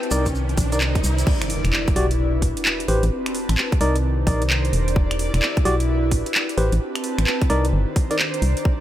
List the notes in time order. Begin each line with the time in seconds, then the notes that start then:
Already playing: C4 E4 G4 B4 G5 A5, riser
0.03 closed hi-hat
0.11 C2 D#3 D4 D#4 A#4 D5, open hi-hat, shaker
0.26 kick, closed hi-hat, shaker
0.31 C5, shaker
0.39 D5
0.49 closed hi-hat
0.57 A#1 A#5, kick, open hi-hat, shaker
0.72 C2 D#4 A#4 D5, closed hi-hat, shaker
0.80 clap, shaker
0.95 kick, closed hi-hat
1.04 C2, open hi-hat, shaker
1.18 closed hi-hat, shaker
1.27 D4 E4 F#4 G4 B4, kick, crash, impact
1.42 finger snap, closed hi-hat
1.50 open hi-hat
1.65 E1, finger snap, closed hi-hat
1.73 clap
1.88 kick, closed hi-hat
1.96 B1 F#4 G4 D5, open hi-hat
2.11 closed hi-hat
2.42 A1, kick, open hi-hat
2.57 closed hi-hat
2.65 clap
2.80 closed hi-hat
2.88 A1 C4 E4 G4 B4 C5, open hi-hat
3.03 A1 B4, closed hi-hat
3.15 A5
3.26 finger snap, closed hi-hat
3.35 open hi-hat
3.49 A1, finger snap, closed hi-hat
3.58 clap
3.72 kick, closed hi-hat
3.80 C2 D#3 D4 D#4 A#4 D5, open hi-hat
3.96 closed hi-hat
4.04 C5
4.19 D5
4.26 A#1 D#4 A#4 D5 A#5, kick, open hi-hat
4.42 C2, closed hi-hat
4.50 clap
4.65 closed hi-hat
4.73 E1, open hi-hat
4.88 closed hi-hat
4.96 E4 F#4 B4, kick
5.11 finger snap, closed hi-hat
5.19 open hi-hat
5.34 E1, finger snap, closed hi-hat
5.42 clap
5.57 kick, closed hi-hat
5.65 B1 F#4 G4 D5, open hi-hat
5.80 closed hi-hat
6.11 A1, kick, open hi-hat
6.26 closed hi-hat
6.35 clap
6.49 closed hi-hat
6.58 A1 C4 E4 G4 B4 C5, open hi-hat
6.71 A1 A5, closed hi-hat
6.76 B4
6.95 finger snap, closed hi-hat
7.04 open hi-hat
7.18 A1, finger snap, closed hi-hat
7.27 clap
7.42 kick, closed hi-hat
7.50 C2 D#3 D4 D#4 A#4 D5, open hi-hat
7.61 C5, closed hi-hat
7.71 G1 D5
7.84 A#5
7.96 kick, open hi-hat
8.11 D#4 A#4 D5, closed hi-hat
8.19 clap
8.34 closed hi-hat
8.42 C2, open hi-hat
8.57 closed hi-hat
8.65 E4 F#4 B4, kick